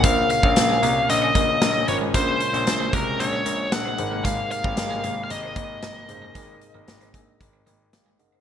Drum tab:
HH |x-x-x-x-x-x-x-x-|x-xxx-x-x-x-x-x-|x-x-x-x-x-x-x-x-|x-x-xxx-x-x-x-x-|
SD |----o-------o---|----o-------o---|----o-------o---|----o-------o---|
BD |o--o------o-----|o-----o---------|o--o------o-----|o-----o-o-------|